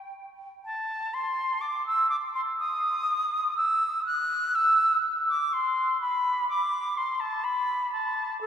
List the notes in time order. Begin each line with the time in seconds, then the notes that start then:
Already playing: G5
0.65 A5
1.14 C6
1.61 D6
1.86 E6
2.10 D6
2.35 C6
2.59 D#6
3.57 E6
4.06 F#6
4.55 E6
5.29 D6
5.53 C6
6.01 B5
6.49 D6
6.97 C6
7.20 A5
7.44 B5
7.92 A5
8.41 A4